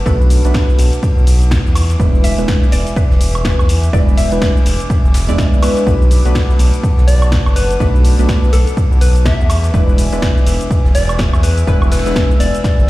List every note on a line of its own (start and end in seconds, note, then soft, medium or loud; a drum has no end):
0.00 12.90 B4 medium
0.00 1.72 F#5 medium
0.00 1.72 A5 medium
0.00 11.39 D6 medium
0.06 0.40 B1 loud
0.06 0.41 A3 medium
0.06 0.41 B3 medium
0.06 0.41 D4 medium
0.06 0.41 F#4 medium
0.06 1.71 A4 medium
0.06 0.41 B4 loud
0.06 kick loud
0.06 closed hi-hat medium
0.06 ride medium
0.06 shaker soft
0.21 ride soft
0.21 shaker soft
0.30 open hi-hat loud
0.30 ride medium
0.30 shaker medium
0.44 0.52 B1 loud
0.44 1.74 A3 medium
0.44 1.74 B3 medium
0.44 1.74 D4 medium
0.44 1.74 F#4 medium
0.44 1.75 B4 medium
0.44 closed hi-hat medium
0.44 shaker soft
0.54 kick loud
0.54 snare loud
0.54 closed hi-hat medium
0.54 ride medium
0.54 shaker soft
0.70 shaker soft
0.78 0.90 B1 loud
0.78 open hi-hat loud
0.78 ride medium
0.78 shaker medium
0.93 closed hi-hat medium
0.93 shaker soft
1.03 kick loud
1.03 closed hi-hat medium
1.03 ride medium
1.03 shaker soft
1.17 1.25 B1 loud
1.17 ride soft
1.17 shaker soft
1.27 1.61 B1 loud
1.27 open hi-hat loud
1.27 ride medium
1.27 shaker medium
1.42 closed hi-hat medium
1.42 shaker soft
1.51 kick loud
1.51 snare loud
1.51 closed hi-hat medium
1.51 ride medium
1.51 shaker soft
1.66 1.97 E2 medium
1.66 shaker soft
1.75 5.83 E5 medium
1.75 5.83 G#5 medium
1.75 open hi-hat loud
1.75 ride medium
1.75 high woodblock medium
1.75 shaker medium
1.90 snare soft
1.90 closed hi-hat medium
1.90 shaker soft
1.99 2.34 E1 loud
1.99 2.35 G#3 medium
1.99 2.35 B3 medium
1.99 2.35 D4 medium
1.99 2.35 E4 medium
1.99 2.35 B4 medium
1.99 kick loud
1.99 closed hi-hat soft
1.99 ride medium
1.99 shaker soft
2.15 shaker soft
2.24 2.69 E5 loud
2.24 open hi-hat loud
2.24 ride medium
2.24 shaker medium
2.38 2.46 E1 loud
2.38 3.91 G#3 medium
2.38 3.91 B3 medium
2.38 3.91 D4 medium
2.38 3.91 E4 medium
2.38 3.91 B4 medium
2.38 closed hi-hat medium
2.38 ride soft
2.38 shaker soft
2.48 kick loud
2.48 snare loud
2.48 closed hi-hat soft
2.48 shaker soft
2.63 shaker soft
2.72 2.84 E1 loud
2.72 2.97 D5 loud
2.72 open hi-hat loud
2.72 ride medium
2.72 shaker medium
2.87 closed hi-hat medium
2.87 shaker soft
2.96 3.44 B4 medium
2.96 kick loud
2.96 closed hi-hat medium
2.96 ride medium
2.96 shaker soft
3.11 3.19 E1 loud
3.11 snare soft
3.11 shaker soft
3.20 3.55 E1 loud
3.20 open hi-hat loud
3.20 ride medium
3.20 shaker medium
3.34 closed hi-hat medium
3.34 ride soft
3.34 high woodblock medium
3.34 shaker soft
3.45 3.95 B4 medium
3.45 kick loud
3.45 snare loud
3.45 closed hi-hat medium
3.45 shaker soft
3.59 3.90 E2 medium
3.59 high woodblock medium
3.59 shaker soft
3.69 open hi-hat loud
3.69 ride medium
3.69 shaker medium
3.84 closed hi-hat medium
3.84 shaker soft
3.93 4.27 E1 loud
3.93 4.28 G#3 medium
3.93 4.28 B3 medium
3.93 4.28 D4 medium
3.93 4.28 E4 medium
3.93 4.28 B4 loud
3.93 4.16 D5 loud
3.93 kick loud
3.93 closed hi-hat soft
3.93 ride medium
3.93 shaker soft
4.08 ride soft
4.08 shaker soft
4.17 5.10 E5 loud
4.17 open hi-hat loud
4.17 ride medium
4.17 shaker medium
4.31 4.40 E1 loud
4.31 5.26 G#3 medium
4.31 5.26 B3 medium
4.31 5.26 D4 medium
4.31 5.26 E4 medium
4.31 5.26 B4 medium
4.31 closed hi-hat medium
4.31 shaker soft
4.41 kick loud
4.41 snare loud
4.41 closed hi-hat medium
4.41 ride medium
4.41 shaker soft
4.57 shaker soft
4.66 4.77 E1 loud
4.66 open hi-hat loud
4.66 ride medium
4.66 shaker medium
4.80 closed hi-hat medium
4.80 shaker soft
4.90 kick loud
4.90 closed hi-hat medium
4.90 ride medium
4.90 shaker soft
5.04 5.30 E1 loud
5.04 ride soft
5.04 shaker soft
5.14 snare loud
5.14 open hi-hat loud
5.14 ride medium
5.14 shaker medium
5.28 5.36 E2 loud
5.28 5.60 G#3 loud
5.28 5.60 B3 medium
5.28 5.60 D4 medium
5.28 5.60 E4 medium
5.28 5.60 D5 loud
5.28 closed hi-hat medium
5.28 shaker soft
5.38 kick loud
5.38 snare loud
5.38 closed hi-hat medium
5.38 shaker soft
5.54 shaker soft
5.62 5.84 G#3 medium
5.62 5.84 B3 medium
5.62 5.84 D4 medium
5.62 5.84 E4 medium
5.62 5.84 B4 medium
5.62 open hi-hat loud
5.62 ride medium
5.62 high woodblock medium
5.62 shaker medium
5.77 snare soft
5.77 closed hi-hat medium
5.77 shaker soft
5.87 6.21 B1 loud
5.87 6.22 A3 medium
5.87 6.22 B3 medium
5.87 6.22 D4 medium
5.87 6.22 F#4 medium
5.87 6.22 B4 medium
5.87 9.46 F#5 medium
5.87 9.46 A5 medium
5.87 kick loud
5.87 closed hi-hat soft
5.87 ride medium
5.87 shaker soft
6.02 shaker soft
6.11 open hi-hat loud
6.11 ride medium
6.11 shaker medium
6.25 6.33 B1 medium
6.25 7.78 A3 medium
6.25 7.78 B3 medium
6.25 7.78 D4 medium
6.25 7.78 F#4 medium
6.25 7.78 B4 medium
6.25 closed hi-hat medium
6.25 ride soft
6.25 shaker soft
6.35 kick loud
6.35 snare loud
6.35 closed hi-hat medium
6.35 ride medium
6.35 shaker soft
6.50 shaker soft
6.58 6.71 B1 loud
6.58 open hi-hat loud
6.58 ride medium
6.58 shaker medium
6.74 closed hi-hat medium
6.74 shaker soft
6.83 kick loud
6.83 closed hi-hat medium
6.83 ride medium
6.83 shaker soft
6.98 7.06 B1 loud
6.98 snare soft
6.98 shaker soft
7.08 7.42 B1 medium
7.08 7.26 D5 medium
7.08 open hi-hat loud
7.08 ride medium
7.08 shaker medium
7.22 closed hi-hat medium
7.22 ride soft
7.22 high woodblock medium
7.22 shaker soft
7.32 kick loud
7.32 snare loud
7.32 closed hi-hat medium
7.32 ride loud
7.32 shaker soft
7.46 7.77 F#1 medium
7.46 high woodblock medium
7.46 shaker soft
7.56 7.74 B4 loud
7.56 open hi-hat loud
7.56 ride medium
7.56 shaker medium
7.71 closed hi-hat medium
7.71 shaker soft
7.80 8.14 B1 medium
7.80 8.15 A3 medium
7.80 8.15 B3 medium
7.80 8.15 D4 medium
7.80 8.16 F#4 medium
7.80 8.16 B4 loud
7.80 kick loud
7.80 closed hi-hat soft
7.80 ride medium
7.80 shaker soft
7.95 ride soft
7.95 shaker soft
8.05 open hi-hat loud
8.05 ride medium
8.05 shaker medium
8.18 8.27 B1 loud
8.18 9.48 A3 medium
8.18 9.48 B3 medium
8.18 9.48 D4 medium
8.18 9.49 F#4 medium
8.18 9.49 B4 medium
8.18 closed hi-hat medium
8.18 shaker soft
8.28 kick loud
8.28 snare loud
8.28 closed hi-hat medium
8.28 ride medium
8.28 shaker soft
8.44 shaker soft
8.53 8.64 B1 loud
8.53 8.71 A4 medium
8.53 open hi-hat loud
8.53 ride medium
8.53 shaker medium
8.67 closed hi-hat medium
8.67 shaker soft
8.77 kick loud
8.77 closed hi-hat medium
8.77 ride medium
8.77 shaker soft
8.91 8.99 B1 loud
8.91 ride soft
8.91 shaker soft
9.01 9.35 B1 loud
9.01 9.24 B4 loud
9.01 open hi-hat loud
9.01 ride medium
9.01 shaker medium
9.16 closed hi-hat medium
9.16 shaker soft
9.25 9.56 E5 medium
9.25 kick loud
9.25 snare loud
9.25 closed hi-hat medium
9.25 ride medium
9.25 shaker soft
9.40 9.71 E2 medium
9.40 shaker soft
9.49 12.90 E5 medium
9.49 12.90 G#5 medium
9.49 open hi-hat loud
9.49 ride medium
9.49 high woodblock medium
9.49 shaker medium
9.64 snare soft
9.64 closed hi-hat medium
9.64 shaker soft
9.74 10.08 E1 medium
9.74 10.09 G#3 medium
9.74 10.09 B3 medium
9.74 10.09 D4 medium
9.74 10.09 E4 medium
9.74 10.09 B4 medium
9.74 kick loud
9.74 closed hi-hat medium
9.74 ride medium
9.74 shaker soft
9.89 shaker soft
9.98 open hi-hat loud
9.98 ride medium
9.98 shaker medium
10.12 10.20 E1 loud
10.12 11.65 G#3 medium
10.12 11.65 B3 medium
10.12 11.65 D4 medium
10.12 11.65 E4 medium
10.12 11.65 B4 medium
10.12 closed hi-hat medium
10.12 ride soft
10.12 shaker soft
10.22 kick loud
10.22 snare loud
10.22 closed hi-hat medium
10.22 ride medium
10.22 shaker soft
10.38 shaker soft
10.46 10.58 E1 loud
10.46 open hi-hat loud
10.46 ride medium
10.46 shaker medium
10.61 closed hi-hat medium
10.61 shaker soft
10.71 kick loud
10.71 closed hi-hat medium
10.71 ride medium
10.71 shaker medium
10.85 10.93 E1 loud
10.85 snare soft
10.85 shaker soft
10.95 11.29 E1 medium
10.95 11.13 D5 loud
10.95 open hi-hat loud
10.95 ride medium
10.95 shaker medium
11.09 closed hi-hat medium
11.09 ride soft
11.09 high woodblock medium
11.09 shaker soft
11.18 kick loud
11.18 snare loud
11.18 closed hi-hat medium
11.18 ride medium
11.18 shaker soft
11.34 11.64 E2 medium
11.34 high woodblock medium
11.34 shaker soft
11.43 11.61 B4 loud
11.43 12.90 E6 medium
11.43 open hi-hat loud
11.43 ride medium
11.43 shaker medium
11.58 closed hi-hat medium
11.58 shaker soft
11.67 12.01 E1 loud
11.67 12.02 G#3 medium
11.67 12.03 B3 medium
11.67 12.03 D4 medium
11.67 12.03 E4 medium
11.67 12.03 B4 loud
11.67 11.86 B4 loud
11.67 kick loud
11.67 closed hi-hat medium
11.67 ride medium
11.67 shaker soft
11.82 ride soft
11.82 high woodblock medium
11.82 shaker soft
11.92 12.10 B4 medium
11.92 snare medium
11.92 open hi-hat loud
11.92 ride medium
11.92 shaker medium
11.99 snare medium
11.99 ride medium
12.06 12.14 E1 loud
12.06 12.90 G#3 medium
12.06 12.90 B3 medium
12.06 12.90 D4 medium
12.06 12.90 E4 medium
12.06 12.90 B4 medium
12.06 snare medium
12.06 closed hi-hat medium
12.06 ride medium
12.06 shaker soft
12.11 snare medium
12.11 ride medium
12.16 kick loud
12.16 snare loud
12.16 closed hi-hat medium
12.16 shaker soft
12.31 shaker soft
12.40 12.52 E1 loud
12.40 12.90 D5 loud
12.40 open hi-hat loud
12.40 ride medium
12.40 shaker medium
12.55 closed hi-hat medium
12.55 shaker soft
12.64 kick loud
12.64 snare medium
12.64 closed hi-hat medium
12.64 ride medium
12.64 shaker soft
12.79 12.90 G#1 medium
12.79 ride soft
12.79 shaker soft